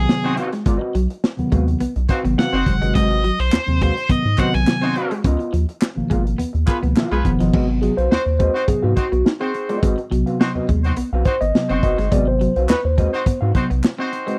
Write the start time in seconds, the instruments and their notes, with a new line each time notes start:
Already playing: tine electric piano C3 D#3 F#3 B3, lead electric guitar G#4
0.09 muted hollow-body jazz guitar stroke, snare
0.24 horn section C4 D#4 F#4 C5, clean electric guitar C4, muted hollow-body jazz guitar stroke, closed hi-hat
0.37 hollow-body jazz guitar C4 F#4 B4 F5, muted clean electric guitar stroke, closed hi-hat
0.52 clean electric guitar G#3, muted hollow-body jazz guitar stroke, snare, closed hi-hat
0.66 sub bass G#1, clean electric guitar G#3, hollow-body jazz guitar B3 F4 A#4 D5, kick, closed hi-hat
0.77 hollow-body jazz guitar C4 F#4 B4 D#5
0.81 muted clean electric guitar stroke
0.95 sub bass B1, clean electric guitar F#3, closed hi-hat
1.10 muted hollow-body jazz guitar stroke, closed hi-hat
1.24 muted hollow-body jazz guitar stroke, snare
1.37 sub bass D#2, tine electric piano C3 D#3 F#3 B3, closed hi-hat
1.52 sub bass D#2, clean electric guitar G#3, hollow-body jazz guitar C4 F#4 B4 F5, kick, closed hi-hat
1.67 muted hollow-body jazz guitar stroke, closed hi-hat
1.80 sub bass B1, clean electric guitar B3, muted hollow-body jazz guitar stroke, closed hi-hat
1.96 sub bass B1, muted hollow-body jazz guitar stroke, closed hi-hat
2.09 horn section C4 D#4 F#4 C5, hollow-body jazz guitar C4 F#4 B4 F5, muted clean electric guitar stroke, kick, closed hi-hat
2.24 sub bass G#1, tine electric piano C3 D#3 F#3 B3, clean electric guitar B3, muted hollow-body jazz guitar stroke, closed hi-hat
2.38 hollow-body jazz guitar C4 F#4 B4 F5, lead electric guitar F#5, snare
2.53 sub bass F#1, horn section C4 D#4 F#4 C5, clean electric guitar C4
2.66 sub bass F#1, tine electric piano C3 D#3 F#3 G#3, muted clean electric guitar stroke, muted hollow-body jazz guitar stroke, kick, closed hi-hat
2.81 sub bass G1, clean electric guitar G#3, hollow-body jazz guitar C4 F#4 B4 D#5, closed hi-hat
2.95 sub bass G#1, clean electric guitar G#3, hollow-body jazz guitar C4 F#4 B4 D#5, lead electric guitar D#5, kick, closed hi-hat
3.10 muted clean electric guitar stroke, closed hi-hat
3.24 clean electric guitar F#3, closed hi-hat
3.39 sub bass B1, lead electric guitar C5, muted hollow-body jazz guitar stroke, closed hi-hat
3.52 sub bass D#2, muted hollow-body jazz guitar stroke, snare, clap
3.66 sub bass D#2, tine electric piano C3 D#3 F#3 C4, closed hi-hat
3.81 clean electric guitar G#3, hollow-body jazz guitar C4 F#4 B4 F5, lead electric guitar C5, kick, closed hi-hat
3.97 muted hollow-body jazz guitar stroke, closed hi-hat
4.09 sub bass G#2, tine electric piano C3 D#3 F#3 B3, clean electric guitar B3, lead electric guitar D#5, muted hollow-body jazz guitar stroke, kick, closed hi-hat
4.25 sub bass G#2, muted hollow-body jazz guitar stroke
4.37 tine electric piano C3 D#3 F#3 B3, horn section C4 D#4 F#4 C5, hollow-body jazz guitar C4 F#4 B4 D#5, lead electric guitar F#5, muted clean electric guitar stroke, kick, clap, closed hi-hat
4.54 sub bass B1, clean electric guitar B3, lead electric guitar G#5, muted hollow-body jazz guitar stroke, closed hi-hat
4.67 muted hollow-body jazz guitar stroke, snare, clap
4.82 clean electric guitar C4, horn section C4 D#4 F#4 C5, muted hollow-body jazz guitar stroke, closed hi-hat
4.96 hollow-body jazz guitar C4 F#4 B4 F5, muted clean electric guitar stroke, closed hi-hat
5.11 clean electric guitar G#3, muted hollow-body jazz guitar stroke, closed hi-hat
5.24 sub bass C#2, hollow-body jazz guitar B3 F4 A#4 D#5, clean electric guitar C#4, kick, closed hi-hat
5.39 muted clean electric guitar stroke, closed hi-hat
5.53 sub bass D#2, clean electric guitar F3, closed hi-hat
5.69 muted hollow-body jazz guitar stroke, closed hi-hat
5.82 muted hollow-body jazz guitar stroke, snare, clap
5.96 sub bass G#1, tine electric piano B2 D#3 F3 A#3
6.10 sub bass G#1, clean electric guitar G#3, hollow-body jazz guitar B3 F4 A#4 F5, kick, closed hi-hat
6.25 muted hollow-body jazz guitar stroke, closed hi-hat
6.38 sub bass D#2, clean electric guitar B3, muted hollow-body jazz guitar stroke, closed hi-hat
6.53 sub bass D#2, muted hollow-body jazz guitar stroke, closed hi-hat
6.66 hollow-body jazz guitar B3 F4 A#4 F5, horn section B3 F4 G#4 B4, muted clean electric guitar stroke, kick, clap, closed hi-hat
6.82 sub bass C#2, tine electric piano B2 D#3 F3 A#3, clean electric guitar B3, muted hollow-body jazz guitar stroke, closed hi-hat
6.96 hollow-body jazz guitar B3 F4 A#4 F5, snare, clap
7.11 sub bass B1, clean electric guitar G#3, horn section B3 F4 G#4 B4, closed hi-hat
7.24 sub bass F#1, tine electric piano B2 D#3 F3 B3, muted hollow-body jazz guitar stroke, muted clean electric guitar stroke, kick, closed hi-hat
7.40 sub bass G1, clean electric guitar F3, hollow-body jazz guitar B3 F4 A#4 D#5, snare, closed hi-hat
7.53 sub bass G#1, tine electric piano C3 F#3 B3, clean electric guitar G#3, hollow-body jazz guitar C4 F#4 B4 D#5, kick, crash
7.69 muted hollow-body jazz guitar stroke, muted clean electric guitar stroke
7.82 clean electric guitar F#3, tine electric piano G#4, muted hollow-body jazz guitar stroke, closed hi-hat
7.97 sub bass B1, hollow-body jazz guitar C4 F#4 B4 F5, tine electric piano C5, closed hi-hat
8.11 sub bass D#2, horn section C4 D#4 F#4 C5, snare
8.26 sub bass D#2, muted hollow-body jazz guitar stroke
8.39 clean electric guitar G#3, hollow-body jazz guitar C4 F#4 B4 D#5, tine electric piano C5, kick, closed hi-hat
8.54 horn section C4 D#4 F#4 C5, muted hollow-body jazz guitar stroke, closed hi-hat
8.67 sub bass G#2, tine electric piano C3 F#3 B3 G#4, clean electric guitar B3, muted hollow-body jazz guitar stroke, kick, closed hi-hat
8.83 sub bass G#2, hollow-body jazz guitar C4 F#4 B4 F5, tine electric piano F#4
8.96 horn section C4 D#4 F#4 C5, muted hollow-body jazz guitar stroke, muted clean electric guitar stroke, kick, closed hi-hat
9.12 sub bass B1, clean electric guitar B3, tine electric piano F#4, muted hollow-body jazz guitar stroke, closed hi-hat
9.25 tine electric piano D#4, muted hollow-body jazz guitar stroke, snare
9.40 horn section C4 D#4 F#4 C5, clean electric guitar C4, tine electric piano G#4, muted hollow-body jazz guitar stroke, closed hi-hat
9.54 muted clean electric guitar stroke, closed hi-hat
9.69 clean electric guitar G#3, hollow-body jazz guitar C4 F#4 B4 D#5, closed hi-hat
9.82 sub bass G#1, clean electric guitar G#3, hollow-body jazz guitar C4 F#4 B4 D#5, kick, closed hi-hat
9.98 muted clean electric guitar stroke, closed hi-hat
10.11 sub bass B1, tine electric piano C3 F#3 B3, clean electric guitar F#3, muted hollow-body jazz guitar stroke, closed hi-hat
10.26 hollow-body jazz guitar C4 F#4 B4 F5, closed hi-hat
10.40 horn section C4 D#4 F#4 C5, snare
10.55 sub bass D#2, hollow-body jazz guitar C4 F#4 B4 D#5
10.69 sub bass D#2, clean electric guitar G#3, kick, closed hi-hat
10.83 horn section C4 D#4 F#4 C5, muted hollow-body jazz guitar stroke, closed hi-hat
10.96 sub bass B1, clean electric guitar B3, muted hollow-body jazz guitar stroke, closed hi-hat
11.13 sub bass B1, hollow-body jazz guitar C4 F#4 B4 F5
11.25 horn section C4 D#4 F#4 C5, tine electric piano C5, muted clean electric guitar stroke, muted hollow-body jazz guitar stroke, kick, closed hi-hat
11.41 sub bass G#1, clean electric guitar B3, tine electric piano D#5, muted hollow-body jazz guitar stroke, closed hi-hat
11.54 tine electric piano C3 F#3 B3, snare
11.69 sub bass F#1, horn section C4 D#4 F#4 C5, clean electric guitar C4, muted hollow-body jazz guitar stroke, closed hi-hat
11.83 sub bass F#1, hollow-body jazz guitar C4 F#4 B4 D#5, tine electric piano D#5, muted clean electric guitar stroke, kick, closed hi-hat
11.98 sub bass G1, clean electric guitar G#3, muted hollow-body jazz guitar stroke, snare, closed hi-hat
12.11 sub bass G#1, tine electric piano C3 F#3 B3 D5, clean electric guitar G#3, hollow-body jazz guitar C4 F#4 B4 D#5, kick, closed hi-hat
12.27 tine electric piano C5, muted clean electric guitar stroke, muted hollow-body jazz guitar stroke
12.41 clean electric guitar F#3, muted hollow-body jazz guitar stroke, closed hi-hat
12.56 sub bass B1, hollow-body jazz guitar C4 F#4 B4 F5, tine electric piano C5, closed hi-hat
12.68 sub bass D#2, horn section B3 D#4 F#4 B4, tine electric piano B4, snare, clap
12.85 sub bass D#2, tine electric piano C5, muted hollow-body jazz guitar stroke
12.97 clean electric guitar G#3, hollow-body jazz guitar C4 F#4 B4 D#5, kick, closed hi-hat
13.13 horn section C4 D#4 F#4 C5, muted hollow-body jazz guitar stroke, closed hi-hat
13.26 sub bass G#2, clean electric guitar B3, muted hollow-body jazz guitar stroke, kick, closed hi-hat
13.41 sub bass G#2, hollow-body jazz guitar C4 F#4 B4 F5
13.55 tine electric piano C3 F#3 B3, horn section C4 D#4 F#4 C5, muted clean electric guitar stroke, kick, closed hi-hat
13.69 sub bass B1, clean electric guitar B3, muted hollow-body jazz guitar stroke, closed hi-hat
13.83 muted hollow-body jazz guitar stroke, snare, clap
13.98 clean electric guitar C4, horn section C4 D#4 F#4 C5, muted hollow-body jazz guitar stroke
14.12 muted clean electric guitar stroke, closed hi-hat
14.26 clean electric guitar G#3, hollow-body jazz guitar C4 F#4 B4 D#5, closed hi-hat